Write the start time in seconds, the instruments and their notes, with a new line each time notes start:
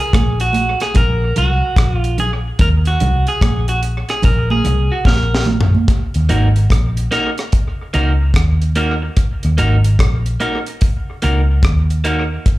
0.00 clean electric guitar G#4
0.13 fingered electric bass A#1, kick, cross-stick, closed hi-hat, high conga
0.40 clean electric guitar F#4, closed hi-hat
0.53 closed hi-hat, high conga
0.80 clean electric guitar G#4, cross-stick, closed hi-hat
0.94 fingered electric bass A#1, clean electric guitar A#4, kick, closed hi-hat, low conga
1.36 fingered electric bass C2, clean electric guitar F#4, closed hi-hat, low conga
1.76 fingered electric bass A#1, kick, cross-stick, closed hi-hat
1.96 clean electric guitar F4
2.04 closed hi-hat
2.18 clean electric guitar G#4, closed hi-hat, low conga
2.59 fingered electric bass D#2, clean electric guitar A#4, kick, closed hi-hat, low conga
2.85 clean electric guitar F#4, closed hi-hat
3.00 fingered electric bass C2, closed hi-hat, low conga
3.27 clean electric guitar G#4, closed hi-hat
3.41 fingered electric bass A#1, kick, cross-stick, closed hi-hat, high conga
3.68 clean electric guitar F#4, closed hi-hat
3.83 closed hi-hat
4.09 clean electric guitar G#4, cross-stick, closed hi-hat
4.22 fingered electric bass A#1, clean electric guitar A#4, kick, closed hi-hat, low conga
4.50 clean electric guitar G#4, high conga
4.64 fingered electric bass C2, closed hi-hat, low conga
4.92 clean electric guitar F#4
5.05 fingered electric bass A#1, clean electric guitar A#4, kick, snare, high conga
5.35 snare
5.46 high conga, low conga
5.61 floor tom
5.75 high conga
5.88 kick, closed hi-hat
6.14 fingered electric bass D#2, closed hi-hat
6.29 fingered electric bass G#1, clean electric guitar A#3 D#4 F#4 A#4, closed hi-hat
6.56 closed hi-hat
6.70 fingered electric bass A#1, kick, cross-stick, closed hi-hat
6.97 closed hi-hat
7.11 clean electric guitar A#3 D#4 F#4 A#4, cross-stick, closed hi-hat
7.38 cross-stick, closed hi-hat
7.52 kick, closed hi-hat
7.94 fingered electric bass C#2, clean electric guitar A#3 D#4 F#4 A#4, closed hi-hat
8.34 fingered electric bass D#2, kick, cross-stick, closed hi-hat
8.62 closed hi-hat
8.75 clean electric guitar A#3 D#4 F#4 A#4, closed hi-hat
9.02 muted clean electric guitar stroke
9.17 kick, closed hi-hat
9.43 fingered electric bass D#2, closed hi-hat
9.58 fingered electric bass G#1, clean electric guitar A#3 D#4 F#4 A#4, closed hi-hat
9.84 closed hi-hat
9.99 fingered electric bass A#1, kick, cross-stick, closed hi-hat
10.26 closed hi-hat
10.40 clean electric guitar A#3 D#4 F#4 A#4, closed hi-hat
10.66 closed hi-hat
10.81 kick, closed hi-hat
11.22 fingered electric bass C#2, clean electric guitar A#3 D#4 F#4 A#4, closed hi-hat
11.63 fingered electric bass D#2, kick, cross-stick, closed hi-hat
11.90 closed hi-hat
12.04 clean electric guitar A#3 D#4 F#4 A#4, closed hi-hat
12.46 kick, closed hi-hat